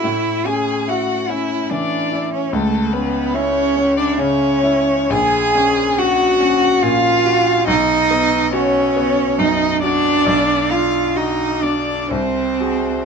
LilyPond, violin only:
\new Staff \with { instrumentName = "Violin" } { \time 3/4 \key cis \phrygian \tempo 4 = 70 e''8 gis''8 fis''8 e''8 d''8. cis''16 | a'8 b'8 cis''8. d''16 cis''4 | \key b \lydian gis''4 fis''4 eis''4 | dis''4 cis''4 dis''8 d''8~ |
d''8 f''8 dis''8 d''8 bis'4 | }